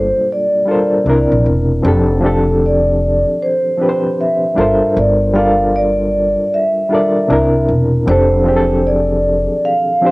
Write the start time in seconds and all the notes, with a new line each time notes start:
Already playing: G1 G3 A#3 D4 F4 A4 A#4 C5 D5
0.32 D5
0.66 G3 D4 F4 A4
0.70 A#4 C5
1.04 C2 C3 C4 D4
1.09 E4 A#4
1.32 A#1
1.46 E1
1.82 F1 F3 C4 D4 G4
1.88 A4
2.20 F3 C4 D4
2.25 G4 A4
2.66 D5
3.42 C5
3.77 F3 C4 D4
3.81 G4 B4
3.89 C5
4.21 E5
4.55 G1 G3 D4 F4 A4
4.59 A#4 C5
4.97 G1 D5
5.34 G3 D4 F4 A4 F5
5.38 A#4 D5
5.76 D5
6.54 E5
6.89 G3 D4 F4 A4
6.93 A#4 D5
7.28 C2 C3 C4 D4 E4
7.33 A#4
7.68 E1
8.06 F1 F3 C4 D4 C5
8.10 G4 A4
8.44 F3 C4 D4
8.48 G4 G#4
8.56 A4
8.87 D5
9.65 F5
10.01 F3 C4 D4 G4
10.06 C5